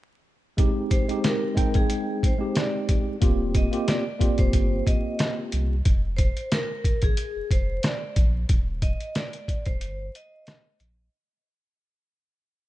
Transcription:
0.57 1.04 G#3 medium
0.57 1.05 C4 medium
0.57 1.05 D#4 medium
0.57 1.06 G4 loud
0.57 kick loud
0.57 closed hi-hat medium
0.91 1.21 C5 medium
0.91 kick medium
0.91 closed hi-hat medium
1.08 1.53 G#3 loud
1.08 1.54 C4 medium
1.08 1.54 D#4 medium
1.08 1.54 G4 loud
1.08 closed hi-hat soft
1.24 1.72 A#4 medium
1.24 snare loud
1.24 closed hi-hat medium
1.54 2.33 G#3 medium
1.54 2.33 C4 medium
1.54 2.34 D#4 medium
1.54 2.34 G5 loud
1.54 kick medium
1.54 closed hi-hat medium
1.74 2.21 G#4 medium
1.74 kick loud
1.74 closed hi-hat medium
1.90 closed hi-hat loud
2.23 2.54 C5 medium
2.23 kick loud
2.23 closed hi-hat medium
2.38 3.14 G#3 medium
2.38 3.15 C4 medium
2.38 3.15 D#4 medium
2.38 3.16 G4 loud
2.55 2.86 D5 medium
2.55 snare loud
2.55 closed hi-hat medium
2.89 kick medium
2.89 closed hi-hat medium
3.21 3.67 D#1 loud
3.21 3.68 A#3 loud
3.21 3.69 C4 medium
3.21 3.69 F4 medium
3.21 3.69 G4 medium
3.21 kick loud
3.21 closed hi-hat medium
3.55 3.85 D#5 medium
3.55 kick medium
3.55 closed hi-hat medium
3.71 4.02 A#3 medium
3.71 4.03 C4 medium
3.71 4.03 F4 medium
3.71 4.03 G4 loud
3.71 closed hi-hat medium
3.88 4.36 D5 medium
3.88 snare loud
3.88 closed hi-hat medium
4.19 5.73 A#3 loud
4.19 5.73 C4 medium
4.19 5.74 F4 medium
4.19 5.74 G4 medium
4.19 kick medium
4.19 closed hi-hat medium
4.38 4.52 D#1 medium
4.38 4.84 C5 medium
4.38 kick medium
4.38 closed hi-hat medium
4.53 4.82 G1 medium
4.53 kick medium
4.53 closed hi-hat loud
4.87 5.35 D#5 medium
4.87 kick loud
4.87 closed hi-hat medium
5.19 snare loud
5.19 closed hi-hat medium
5.52 5.82 C2 medium
5.52 closed hi-hat medium
5.85 6.30 F1 loud
5.85 kick loud
5.85 closed hi-hat medium
6.17 6.47 C5 medium
6.17 kick medium
6.17 closed hi-hat medium
6.37 closed hi-hat soft
6.52 7.00 A#4 medium
6.52 snare loud
6.52 closed hi-hat medium
6.84 kick medium
6.84 closed hi-hat medium
7.02 7.16 G#1 medium
7.02 7.48 G#4 medium
7.02 kick medium
7.02 closed hi-hat medium
7.17 closed hi-hat loud
7.36 7.42 F1 soft
7.51 7.79 F1 medium
7.51 7.81 C5 medium
7.51 kick medium
7.51 closed hi-hat medium
7.83 8.14 D5 medium
7.83 snare loud
7.83 closed hi-hat medium
8.16 8.45 A#1 medium
8.16 kick medium
8.16 closed hi-hat medium
8.49 8.94 D#1 loud
8.49 kick loud
8.49 closed hi-hat medium
8.82 9.12 D#5 medium
8.82 kick medium
8.82 closed hi-hat medium
9.00 closed hi-hat soft
9.15 9.64 D5 medium
9.15 snare loud
9.15 closed hi-hat medium
9.33 closed hi-hat soft
9.48 kick medium
9.48 closed hi-hat medium
9.65 9.83 D#1 medium
9.65 10.11 C5 medium
9.65 kick loud
9.65 closed hi-hat medium
9.81 10.10 G1 medium
9.81 closed hi-hat loud
10.15 10.63 D#5 medium
10.15 closed hi-hat medium
10.47 snare loud
10.47 closed hi-hat medium
10.80 11.09 A#1 medium
10.80 closed hi-hat medium

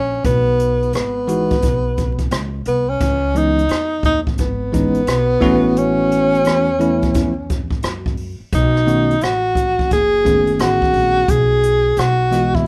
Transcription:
0.00 0.23 A#1 medium
0.00 0.23 C#4 medium
0.24 0.90 B1 medium
0.24 0.90 B3 loud
0.24 kick loud
0.24 closed hi-hat medium
0.59 closed hi-hat medium
0.82 closed hi-hat soft
0.93 1.47 G#1 medium
0.93 2.38 B3 medium
0.93 cross-stick loud
0.93 closed hi-hat medium
1.27 1.55 E3 medium
1.27 1.55 G#3 medium
1.27 1.55 B3 medium
1.27 1.55 D#4 medium
1.27 1.55 F#4 medium
1.27 closed hi-hat medium
1.50 muted upright bass stroke soft
1.50 kick medium
1.50 closed hi-hat soft
1.62 2.28 B1 medium
1.62 kick medium
1.62 closed hi-hat medium
1.97 kick medium
1.97 closed hi-hat medium
2.18 kick medium
2.18 closed hi-hat soft
2.31 2.64 C#2 medium
2.31 cross-stick loud
2.31 closed hi-hat medium
2.65 2.99 C2 medium
2.65 2.91 B3 medium
2.65 closed hi-hat medium
2.89 3.38 C#4 medium
3.00 3.66 C#2 loud
3.00 kick loud
3.00 closed hi-hat medium
3.34 3.62 E3 medium
3.34 3.62 G#3 medium
3.34 3.62 B3 soft
3.34 3.62 C#4 medium
3.34 3.63 D#4 medium
3.34 4.05 D#4 loud
3.34 closed hi-hat medium
3.59 closed hi-hat soft
3.69 4.02 E2 medium
3.69 cross-stick medium
3.69 closed hi-hat medium
4.03 4.36 D#2 medium
4.03 4.21 D#4 medium
4.03 kick medium
4.03 closed hi-hat medium
4.27 kick medium
4.38 5.04 G#1 medium
4.38 5.80 B3 medium
4.38 kick medium
4.38 closed hi-hat medium
4.72 5.00 E3 medium
4.72 5.00 G#3 medium
4.72 5.00 B3 medium
4.72 5.00 C#4 medium
4.72 5.00 D#4 medium
4.72 kick medium
4.72 closed hi-hat medium
4.94 closed hi-hat soft
5.07 5.40 B1 medium
5.07 cross-stick loud
5.07 closed hi-hat medium
5.41 6.41 A1 medium
5.41 6.68 E3 medium
5.41 6.68 A3 medium
5.41 6.68 B3 medium
5.41 6.68 C#4 medium
5.41 6.69 F#4 loud
5.41 kick loud
5.41 open hi-hat soft
5.77 7.84 C#4 loud
5.77 closed hi-hat medium
6.11 closed hi-hat medium
6.34 closed hi-hat soft
6.44 7.11 E2 medium
6.44 cross-stick loud
6.44 closed hi-hat medium
6.79 7.31 E3 medium
6.79 7.32 A3 medium
6.79 7.32 B3 medium
6.79 7.32 C#4 medium
6.79 7.32 E4 medium
6.79 closed hi-hat medium
7.02 kick medium
7.02 closed hi-hat soft
7.14 7.80 E2 medium
7.14 kick loud
7.14 closed hi-hat medium
7.50 kick medium
7.50 closed hi-hat medium
7.71 kick medium
7.83 8.37 F#2 medium
7.83 cross-stick loud
7.83 closed hi-hat medium
8.06 kick medium
8.17 open hi-hat soft
8.40 muted upright bass stroke soft
8.52 9.18 B1 loud
8.52 9.25 D#4 medium
8.52 kick loud
8.52 closed hi-hat medium
8.76 cross-stick soft
8.86 9.13 D#3 medium
8.86 9.14 A3 medium
8.86 9.14 B3 medium
8.86 9.14 C#4 medium
8.86 9.14 F#4 medium
8.86 closed hi-hat medium
9.11 closed hi-hat soft
9.21 9.87 A1 medium
9.21 9.91 F#4 loud
9.21 cross-stick loud
9.21 closed hi-hat medium
9.55 kick medium
9.55 closed hi-hat medium
9.79 kick medium
9.91 10.56 F#1 medium
9.91 10.55 G#4 loud
9.91 kick medium
9.91 closed hi-hat medium
10.24 11.23 D#3 medium
10.24 11.23 A3 medium
10.24 11.23 B3 medium
10.24 11.24 C#4 medium
10.24 11.24 G#4 medium
10.24 kick medium
10.24 closed hi-hat medium
10.47 closed hi-hat soft
10.55 10.63 G#4 medium
10.59 10.92 A1 medium
10.59 11.31 F#4 loud
10.59 cross-stick loud
10.59 closed hi-hat medium
10.82 kick medium
10.93 11.26 A#1 medium
10.93 open hi-hat soft
11.28 11.94 B1 loud
11.28 12.00 G#4 loud
11.28 kick loud
11.28 closed hi-hat medium
11.63 closed hi-hat medium
11.96 12.63 B1 medium
11.96 12.57 F#4 medium
11.96 cross-stick medium
11.96 closed hi-hat medium
12.31 12.67 E3 medium
12.31 12.67 G#3 medium
12.31 12.67 B3 medium
12.31 12.40 F4 soft
12.31 12.67 D#5 soft
12.31 cross-stick soft
12.31 closed hi-hat medium
12.39 12.67 F#4 medium
12.55 12.67 E4 medium
12.55 kick medium

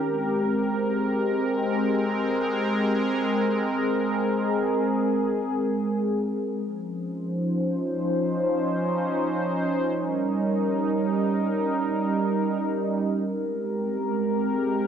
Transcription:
0.00 6.61 G#3 medium
0.00 6.61 C4 medium
0.00 3.30 G4 medium
0.00 6.61 A#4 medium
3.34 6.62 G#4 medium
6.65 9.93 F3 medium
6.65 13.23 C#4 medium
6.65 9.93 D#4 medium
6.65 9.93 C5 medium
9.96 13.24 G3 medium
9.96 13.24 D#4 medium
9.96 13.24 A#4 medium
13.27 14.87 G#3 medium
13.27 14.87 C4 medium
13.27 14.87 G4 medium
13.27 14.87 A#4 medium

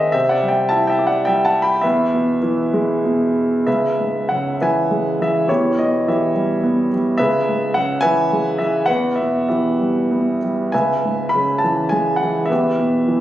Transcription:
0.00 0.10 G#2 medium
0.00 0.17 D#3 soft
0.00 0.12 G#3 soft
0.00 0.12 C4 medium
0.00 0.14 C5 medium
0.00 0.17 C#5 medium
0.00 0.17 D#5 medium
0.00 0.12 E5 medium
0.00 0.17 F#5 medium
0.00 0.16 G#5 medium
0.12 1.79 C3 medium
0.12 0.32 C5 medium
0.12 0.33 E5 medium
0.29 0.50 D5 medium
0.29 0.49 F#5 medium
0.42 1.26 G3 soft
0.48 0.69 E5 medium
0.48 0.70 G5 medium
0.69 1.81 E4 medium
0.69 0.88 E5 medium
0.69 0.89 A5 medium
0.87 1.07 E5 medium
0.87 1.08 G5 medium
0.99 1.81 G4 medium
1.07 1.26 D5 medium
1.07 1.25 F#5 medium
1.25 1.83 G3 medium
1.25 1.45 E5 medium
1.25 1.46 G5 medium
1.45 1.63 F#5 medium
1.45 1.63 A5 medium
1.62 1.82 G5 medium
1.62 1.83 B5 medium
1.81 3.63 E2 medium
1.81 2.38 B4 medium
1.81 2.37 E5 medium
2.14 3.03 B2 medium
2.42 3.63 E3 medium
2.73 3.65 G#3 medium
3.04 3.65 B2 medium
3.66 5.45 C#2 soft
3.66 4.55 G#4 soft
3.66 4.56 B4 soft
3.66 4.31 E5 medium
4.00 5.16 G#2 soft
4.29 5.46 C#3 soft
4.29 4.60 F#5 medium
4.61 5.19 E3 soft
4.61 5.45 B4 medium
4.61 5.21 E5 medium
4.61 5.22 G#5 medium
4.91 5.48 G#3 soft
5.21 5.49 E3 soft
5.21 5.48 E5 medium
5.48 7.16 E2 medium
5.48 6.31 E4 medium
5.48 6.08 G4 medium
5.48 5.79 C#5 medium
5.78 6.88 B2 soft
5.78 6.08 D#5 medium
6.08 7.16 E3 soft
6.08 6.88 G4 soft
6.08 6.88 B4 soft
6.08 6.88 E5 medium
6.35 6.91 G3 soft
6.63 7.18 B3 medium
6.93 7.19 G3 soft
7.18 8.85 C#2 medium
7.18 8.00 G#4 medium
7.18 7.99 B4 medium
7.18 7.76 E5 medium
7.48 8.57 G#2 soft
7.74 8.86 C#3 medium
7.74 8.04 F#5 medium
8.01 8.59 E3 medium
8.01 8.84 B4 medium
8.01 8.57 E5 medium
8.01 8.60 G#5 loud
8.32 8.88 G#3 medium
8.58 8.88 E3 medium
8.58 8.89 E5 medium
8.86 10.69 E2 medium
8.86 9.48 B4 medium
8.86 9.18 F#5 medium
9.16 9.47 E5 medium
9.20 10.39 B2 soft
9.48 10.69 E3 soft
9.48 10.38 G4 soft
9.48 10.38 B4 soft
9.48 10.37 E5 medium
9.80 10.42 G3 soft
10.11 10.71 B3 soft
10.43 10.73 G3 soft
10.72 12.47 C#2 soft
10.72 11.60 B4 medium
10.72 11.60 E5 medium
10.72 11.35 G#5 medium
11.04 12.19 G#2 soft
11.29 11.62 B5 medium
11.35 12.48 C#3 soft
11.58 11.91 A5 medium
11.64 12.21 E3 soft
11.89 12.48 G#3 medium
11.89 12.18 G#5 medium
12.16 12.49 F#5 medium
12.23 12.50 E3 soft
12.46 13.21 E2 medium
12.46 13.21 E5 medium
12.51 13.21 G4 medium
12.51 13.21 B4 soft
12.78 13.21 B2 soft
13.08 13.21 E3 medium

